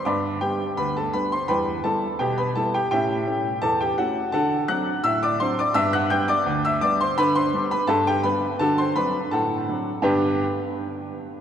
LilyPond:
<<
  \new Staff \with { instrumentName = "Upright piano" } { \time 2/4 \key g \major \tempo 4 = 84 <d'' b'' d'''>8 <g' g''>8 <b' b''>16 <a' a''>16 <b' b''>16 <c'' c'''>16 | <b' g'' b''>8 <a' a''>8 <g' g''>16 <b' b''>16 <a' a''>16 <g' g''>16 | <g' e'' g''>4 <a' a''>16 <g' g''>16 <fis' fis''>8 | <a' fis'' a''>8 <fis'' fis'''>8 <e'' e'''>16 <d'' d'''>16 <c'' c'''>16 <d'' d'''>16 |
<e'' e'''>16 <fis'' fis'''>16 <g'' g'''>16 <d'' d'''>8 <e'' e'''>16 <d'' d'''>16 <c'' c'''>16 | <b' b''>16 <c'' c'''>8 <b' b''>16 <a' a''>16 <g' g''>16 <b' b''>8 | <a' a''>16 <c'' c'''>16 <b' b''>8 <a' fis'' a''>4 | <g, d b d' g' b' g''>8 r4. | }
  \new Staff \with { instrumentName = "Upright piano" } { \time 2/4 \key g \major <g, b>8 <g b d'>8 d,8 <g b d'>8 | <e, g>8 <g b e'>8 b,8 <g b e'>8 | <a, cis'>8 <a cis' e'>8 e,8 <a cis' e'>8 | <d fis'>8 <fis c' d'>8 a,8 <fis c' d'>8 |
<g, b>8 <g b d'>8 d,8 <g b d'>8 | d8 <g b d'>8 g,8 <g b d'>8 | <d fis'>8 <fis c' d'>8 a,8 <fis c' d'>8 | r2 | }
>>